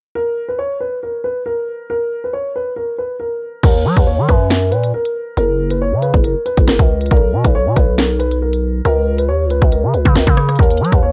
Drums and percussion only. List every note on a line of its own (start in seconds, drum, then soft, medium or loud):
3.63 kick loud
3.63 closed hi-hat medium
3.63 crash loud
3.97 kick medium
3.97 closed hi-hat medium
4.29 kick medium
4.29 closed hi-hat medium
4.50 snare loud
4.50 closed hi-hat medium
4.72 closed hi-hat medium
4.84 closed hi-hat medium
5.05 closed hi-hat medium
5.37 closed hi-hat medium
5.70 closed hi-hat medium
6.02 closed hi-hat medium
6.14 kick medium
6.24 closed hi-hat medium
6.46 closed hi-hat medium
6.57 kick loud
6.57 closed hi-hat medium
6.68 snare loud
6.79 kick loud
7.01 closed hi-hat medium
7.06 closed hi-hat medium
7.11 kick loud
7.11 closed hi-hat medium
7.17 closed hi-hat medium
7.44 kick medium
7.44 closed hi-hat medium
7.76 kick medium
7.76 closed hi-hat medium
7.98 snare loud
7.98 closed hi-hat medium
8.20 closed hi-hat medium
8.31 closed hi-hat medium
8.53 closed hi-hat medium
8.85 closed hi-hat medium
9.18 closed hi-hat medium
9.50 closed hi-hat medium
9.62 kick medium
9.72 closed hi-hat medium
9.94 closed hi-hat medium
10.05 kick loud
10.05 closed hi-hat medium
10.15 snare loud
10.27 kick loud
10.37 cross-stick loud
10.49 cross-stick medium
10.49 closed hi-hat soft
10.56 kick loud
10.56 closed hi-hat soft
10.63 closed hi-hat medium
10.71 closed hi-hat medium
10.77 closed hi-hat medium
10.85 closed hi-hat medium
10.92 kick medium
10.92 closed hi-hat medium